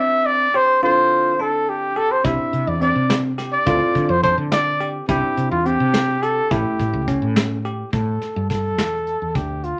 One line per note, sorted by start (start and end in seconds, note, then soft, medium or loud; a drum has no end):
0.00 0.47 C4 medium
0.00 0.79 C4 medium
0.00 0.80 D4 medium
0.00 0.81 E4 medium
0.00 0.81 G4 medium
0.00 0.28 E5 loud
0.26 0.57 D5 loud
0.54 0.79 G4 medium
0.54 0.83 C5 loud
0.82 2.22 D3 medium
0.82 2.22 C4 medium
0.82 2.22 E4 medium
0.82 1.32 F4 medium
0.82 2.23 F4 medium
0.82 2.23 A4 medium
0.82 1.43 C5 loud
1.40 1.89 D4 medium
1.40 1.71 A4 medium
1.69 1.99 G4 medium
1.96 2.21 G4 medium
1.96 2.13 A4 medium
2.11 2.27 C5 medium
2.24 2.37 C2 loud
2.24 3.63 C4 medium
2.24 3.64 D4 medium
2.24 2.74 E4 medium
2.24 3.64 E4 medium
2.24 3.65 G4 medium
2.24 2.70 E5 medium
2.24 kick loud
2.24 closed hi-hat medium
2.53 2.65 C3 medium
2.53 closed hi-hat medium
2.67 2.91 E2 medium
2.67 2.82 D5 medium
2.81 3.31 C4 medium
2.81 3.23 D5 medium
2.81 closed hi-hat medium
2.96 3.56 C3 medium
3.10 snare loud
3.10 closed hi-hat medium
3.38 3.63 G4 medium
3.38 snare soft
3.38 closed hi-hat medium
3.53 4.11 D5 loud
3.65 3.79 D2 loud
3.65 5.05 C4 medium
3.65 5.06 E4 medium
3.65 4.16 F4 medium
3.65 5.06 F4 medium
3.65 5.07 A4 medium
3.65 kick loud
3.65 closed hi-hat medium
3.95 4.07 D3 medium
3.95 kick medium
3.95 closed hi-hat medium
4.09 4.33 F2 medium
4.09 4.23 C5 medium
4.23 4.73 D4 medium
4.23 4.36 C5 medium
4.23 kick medium
4.23 closed hi-hat medium
4.38 4.98 D3 medium
4.52 4.92 D5 loud
4.52 snare medium
4.52 closed hi-hat medium
4.80 5.05 G4 medium
4.80 closed hi-hat medium
5.08 5.21 C2 medium
5.08 6.48 C4 medium
5.08 6.48 D4 medium
5.08 5.58 E4 medium
5.08 6.48 E4 medium
5.08 5.49 G4 medium
5.08 6.49 G4 medium
5.08 kick loud
5.08 closed hi-hat medium
5.37 5.49 C3 medium
5.37 closed hi-hat medium
5.51 5.76 E2 medium
5.51 5.68 F4 medium
5.66 6.15 C4 medium
5.66 6.25 G4 loud
5.66 closed hi-hat medium
5.80 6.40 C3 medium
5.94 snare loud
5.94 closed hi-hat medium
6.23 6.47 G4 medium
6.23 6.53 A4 medium
6.23 closed hi-hat medium
6.50 6.63 A1 loud
6.50 7.90 A3 medium
6.50 7.90 C#4 medium
6.50 7.01 E4 medium
6.50 7.91 E4 medium
6.50 7.37 G4 medium
6.50 7.91 G4 medium
6.50 kick loud
6.50 closed hi-hat medium
6.80 6.92 A2 medium
6.80 kick medium
6.80 closed hi-hat medium
6.93 7.18 C#2 medium
7.08 7.57 C#4 medium
7.08 kick medium
7.08 closed hi-hat medium
7.22 7.82 A2 medium
7.36 snare loud
7.36 closed hi-hat medium
7.65 7.90 G4 medium
7.65 closed hi-hat soft
7.93 8.17 A2 medium
7.93 8.46 A4 medium
7.93 kick medium
7.93 closed hi-hat medium
8.21 snare soft
8.21 closed hi-hat medium
8.36 8.79 G2 medium
8.50 9.37 A4 medium
8.50 kick medium
8.50 snare soft
8.50 closed hi-hat medium
8.78 9.15 E2 medium
8.78 snare medium
8.78 closed hi-hat medium
9.07 closed hi-hat medium
9.22 9.34 E2 medium
9.35 9.72 D2 medium
9.35 9.66 G4 medium
9.35 kick medium
9.35 closed hi-hat medium
9.63 9.80 F4 medium
9.63 closed hi-hat medium